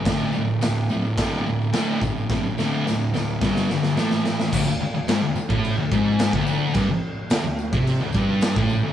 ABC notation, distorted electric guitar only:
X:1
M:4/4
L:1/16
Q:1/4=108
K:Gdor
V:1 name="Distorted electric guitar" clef=bass
[D,,A,,D,]2 [D,,A,,]2 [D,,A,,]2 [D,,A,,]2 [D,,A,,D,]2 [D,,A,,]2 [D,,A,,D,]2 [D,,A,,]2 | [D,,A,,]2 [D,,A,,D,]2 [D,,A,,]2 [D,,A,,]2 [G,,D,G,]2 [G,,D,]2 [A,,E,A,]2 [A,,E,]2 | D,, D,, z D,, ^G,, D,, D,, A,,2 D,, G,,3 D,,3 | G,, z3 D,, D,,2 C,2 D,, G,,3 A,,2 D,, |]